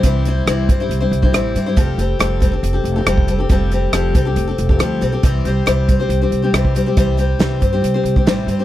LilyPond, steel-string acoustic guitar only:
\new Staff \with { instrumentName = "Steel-string acoustic guitar" } { \time 4/4 \key c \major \tempo 4 = 138 <c e g c' e' c''>8 <g c' e' c''>8 <c e g c' e' c''>8 <g c' e' c''>16 <g c' e' c''>8 <g c' e' c''>8 <g c' e' c''>16 <c e g c' e' c''>8 <g c' e' c''>16 <g c' e' c''>16 | <f g c' g' a'>8 <g c' g' a'>8 <f g c' g' a'>8 <g c' g' a'>16 <c' g' a'>8 <c' g' a'>8 <c' g' a'>16 <f g c' g' a'>8 <g c' g' a'>16 <c' g' a'>16 | <f g c' g' a'>8 <g c' g' a'>8 <f g c' g' a'>8 <g c' g' a'>16 <c' g' a'>8 <c' g' a'>8 <c' g' a'>16 <f g c' g' a'>8 <g c' g' a'>16 <c' g' a'>16 | <c e g c' g' c''>8 <g c' g' c''>8 <c e g c' g' c''>8 <g c' g' c''>16 <g c' g' c''>8 <g c' g' c''>8 <g c' g' c''>16 <c e g c' g' c''>8 <g c' g' c''>16 <g c' g' c''>16 |
<c e g c' g' c''>8 <g c' g' c''>8 <c e g c' g' c''>8 <g c' g' c''>16 <g c' g' c''>8 <g c' g' c''>8 <g c' g' c''>16 <c e g c' g' c''>8 <g c' g' c''>16 <c' g' c''>16 | }